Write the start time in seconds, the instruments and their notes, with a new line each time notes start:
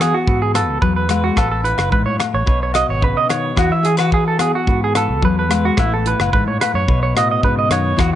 Already playing: fingered electric bass E3, nylon-string guitar E3 F#4 B4
0.00 nylon-string guitar B3, clean electric guitar G#4, cross-stick, closed hi-hat, low agogo
0.14 clean electric guitar F#4
0.27 fingered electric bass G#2, nylon-string guitar B4, kick
0.42 clean electric guitar G#4
0.54 clean electric guitar A4, nylon-string guitar B4, cross-stick, closed hi-hat, low agogo
0.69 fingered electric bass C#2
0.81 fingered electric bass E2, nylon-string guitar F#3, clean electric guitar B4, kick
0.96 clean electric guitar B4
1.09 nylon-string guitar G#3, cross-stick, closed hi-hat, low agogo
1.24 clean electric guitar F#4
1.36 fingered electric bass A1, clean electric guitar A4, nylon-string guitar B4, muted nylon-string guitar stroke, kick, cross-stick, low agogo
1.52 clean electric guitar A4
1.64 nylon-string guitar E4, clean electric guitar B4, closed hi-hat
1.78 fingered electric bass F#1, cross-stick, low agogo
1.91 fingered electric bass A1, nylon-string guitar G#2, clean electric guitar B4, kick
2.06 fingered electric bass A2, clean electric guitar C#5
2.18 nylon-string guitar A2, muted clean electric guitar stroke, cross-stick, closed hi-hat, low agogo
2.34 fingered electric bass A1, clean electric guitar C#5
2.46 fingered electric bass B1, nylon-string guitar B2 B4, kick
2.63 clean electric guitar C#5
2.74 nylon-string guitar F#4, clean electric guitar D#5, cross-stick, closed hi-hat, low agogo
2.89 fingered electric bass G#1, clean electric guitar C#5
3.01 nylon-string guitar C#3, clean electric guitar B4, kick
3.17 clean electric guitar D#5
3.29 nylon-string guitar D#3, clean electric guitar C#5, cross-stick, closed hi-hat, low agogo
3.56 fingered electric bass E2, nylon-string guitar E3 B4, clean electric guitar F#4, kick, cross-stick, low agogo
3.70 fingered electric bass E3, clean electric guitar E5
3.83 nylon-string guitar G#4, clean electric guitar G#4, closed hi-hat
3.97 clean electric guitar F#4, nylon-string guitar B4, cross-stick, low agogo
4.12 nylon-string guitar F#4, clean electric guitar G#4, kick
4.28 clean electric guitar A4
4.39 nylon-string guitar B3, clean electric guitar G#4, cross-stick, closed hi-hat, low agogo
4.55 clean electric guitar F#4
4.67 fingered electric bass G#2, nylon-string guitar B4, kick
4.84 clean electric guitar G#4
4.95 clean electric guitar A4, nylon-string guitar B4, cross-stick, closed hi-hat, low agogo
5.09 fingered electric bass C#2
5.22 fingered electric bass E2, nylon-string guitar F#3, clean electric guitar B4, kick
5.39 clean electric guitar B4
5.49 nylon-string guitar G#3, cross-stick, closed hi-hat, low agogo
5.65 clean electric guitar F#4
5.77 fingered electric bass A1, nylon-string guitar A2 B4, clean electric guitar E4, kick, cross-stick, low agogo
5.94 clean electric guitar A4
6.06 nylon-string guitar E4, clean electric guitar B4, closed hi-hat
6.19 fingered electric bass F#1, cross-stick, low agogo
6.33 fingered electric bass A1, nylon-string guitar G#2, clean electric guitar B4, kick
6.47 fingered electric bass A2, clean electric guitar C#5
6.60 nylon-string guitar A2, clean electric guitar B4, cross-stick, closed hi-hat, low agogo
6.74 fingered electric bass F#2, clean electric guitar C#5
6.88 fingered electric bass B1, nylon-string guitar B2 B4, kick
7.03 clean electric guitar C#5
7.15 fingered electric bass A2, nylon-string guitar F#4, clean electric guitar D#5, cross-stick, closed hi-hat, low agogo
7.31 clean electric guitar D#5
7.43 fingered electric bass G#2, nylon-string guitar C#3, clean electric guitar B4, kick
7.59 clean electric guitar D#5
7.70 fingered electric bass F#2, nylon-string guitar D#3, clean electric guitar C#5, cross-stick, closed hi-hat, low agogo
7.97 fingered electric bass E2, nylon-string guitar E3 B4, clean electric guitar F#4, kick, cross-stick, low agogo